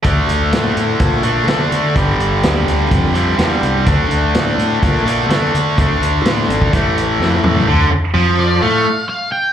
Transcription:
<<
  \new Staff \with { instrumentName = "Lead electric guitar" } { \time 4/4 \key d \minor \tempo 4 = 126 r1 | r1 | r1 | r1 |
r4. d''8 f''4 f''8 g''8 | }
  \new Staff \with { instrumentName = "Distorted electric guitar" } { \clef bass \time 4/4 \key d \minor <d a d'>2~ <d a d'>8 <d a d'>8 <d a d'>4 | <g, d g>2~ <g, d g>8 <g, d g>8 <g, d g>4 | <d a d'>2~ <d a d'>8 <d a d'>8 <d a d'>4 | <d a d'>2 <a, e a>2 |
d8 r8 f4 a8 r4. | }
  \new Staff \with { instrumentName = "Fingered electric bass" } { \clef bass \time 4/4 \key d \minor d,8 d,8 a,8 a,8 bes,8 bes,8 d8 d8 | g,,8 g,,8 d,8 d,8 f,4 e,8 c,8 | d,8 d,8 a,8 a,8 bes,8 bes,8 d8 d8 | d,8 d,8 a,8 gis,,8 a,,4 f,8 e,8 |
d,8 r8 f,4 a,8 r4. | }
  \new DrumStaff \with { instrumentName = "Drums" } \drummode { \time 4/4 <hh bd>8 hh8 <hh sn>8 hh8 <hh bd>8 hh8 <hh sn>8 hh8 | <hh bd>8 hh8 <hh sn>8 hh8 <hh bd>8 hh8 <hh sn>8 hh8 | <hh bd>8 hh8 <hh sn>8 hh8 <hh bd>8 hh8 <hh sn>8 hh8 | <hh bd>8 hh8 <hh sn>8 hh16 bd16 <hh bd>8 hh8 sn8 toml16 tomfh16 |
r4 r4 r4 r4 | }
>>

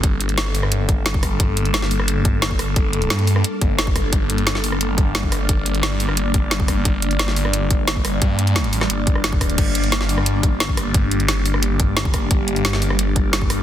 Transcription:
<<
  \new Staff \with { instrumentName = "Synth drone" } { \time 4/4 \key g \minor \tempo 4 = 176 << { a'1~ | a'1~ | a'1 | d''1~ |
d''1~ | d''1~ | d''1 | g'1~ |
g'1 | bes'1 | } \\ { <g bes d'>1~ | <g bes d'>1~ | <g bes d'>1~ | <g bes d'>1~ |
<g bes d'>1~ | <g bes d'>1~ | <g bes d'>1~ | <g bes d'>1~ |
<g bes d'>1~ | <g bes d'>1 | } >> }
  \new Staff \with { instrumentName = "Detuned saw bass" } { \clef bass \time 4/4 \key g \minor g,,1 | g,,1 | g,,4 g,4 r8 g,,4. | g,,1 |
g,,1 | g,,1 | g,4. a,,8 g,,2 | g,,1 |
g,,1 | g,,1 | }
  \new DrumStaff \with { instrumentName = "Drums" } \drummode { \time 4/4 <hh bd>8 hh16 hh16 <hh sn>8 hho16 ss16 hh8 <hh bd>8 <hh sn>16 bd16 <hho bd ss>8 | <hh bd>8 hh16 hh16 <hh sn>16 sn16 hho16 ss16 hh8 <hh bd>8 <hh sn>16 bd16 <hho ss>8 | <hh bd>8 hh16 hh16 <hh sn>16 hh16 hho16 ss16 hh8 <hh bd>8 <hh sn>16 bd16 <hho bd ss>8 | <hh bd>8 hh16 hh16 <hh sn>16 sn16 hho16 ss16 hh8 <hh bd>8 <hh sn>16 bd16 <hho ss>8 |
<hh bd>8 hh16 hh16 <hh sn>8 hho16 ss16 hh8 <hh bd>8 <hh sn>16 bd16 <hho bd ss>8 | <hh bd>8 hh16 hh16 <hh sn>16 sn16 hho16 ss16 hh8 <hh bd>8 <hh sn>16 bd16 <hho ss>8 | <hh bd>8 hh16 hh16 <hh sn>16 hh16 hho16 <ss sn>16 hh8 <hh bd>16 ss16 <hh sn>16 bd16 <hho bd ss>16 hh16 | <cymc hh bd>8 hh16 hh16 <hh sn>16 sn16 hho16 ss16 hh8 <hh bd>8 <hh sn>16 bd16 <hho ss>8 |
<hh bd>8 hh16 hh16 <hh sn>8 hho16 ss16 hh8 <hh bd>8 <hh sn>16 bd16 <hho bd ss>8 | <hh bd>8 hh16 hh16 <hh sn>16 sn16 hho16 ss16 hh8 <hh bd>8 <hh sn>16 bd16 <hho ss>8 | }
>>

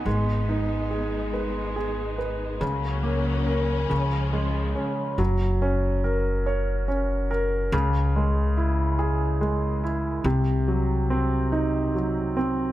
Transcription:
<<
  \new Staff \with { instrumentName = "Grand piano" } { \time 6/8 \key fis \major \tempo 4. = 47 gis8 dis'8 gis'8 b'8 gis'8 b'8 | cis8 ais8 ais'8 cis8 gis8 cis'8 | fis8 cis'8 ais'8 cis''8 cis'8 ais'8 | cis8 gis8 e'8 gis'8 gis8 e'8 |
c8 ges8 c'8 ees'8 ges8 c'8 | }
  \new Staff \with { instrumentName = "String section" } { \time 6/8 \key fis \major << { r2. | cis'2. | r2. | r2. |
r2. | } \\ { <gis b dis'>2. | <fis ais>4. <eis gis>4. | r2. | r2. |
r2. | } >> }
  \new Staff \with { instrumentName = "Upright bass" } { \clef bass \time 6/8 \key fis \major gis,,2. | cis,4. cis,4 r8 | fis,,2. | cis,2. |
c,2. | }
>>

